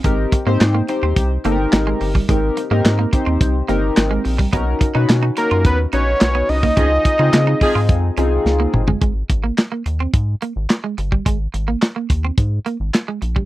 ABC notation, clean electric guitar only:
X:1
M:4/4
L:1/16
Q:1/4=107
K:Ab
V:1 name="Clean electric guitar"
A, z2 B, z B, z C z2 B, z2 A, z G, | A, z2 B, z B, z C z2 B, z2 A, z G, | =B, z2 ^D z D z F z2 D z2 B, z ^A, | D z2 E z E z F z2 D z2 B, z A, |
A, z2 B, z B, z C z2 B, z2 A, z G, | A, z2 B, z B, z C z2 B, z2 A, z G, |]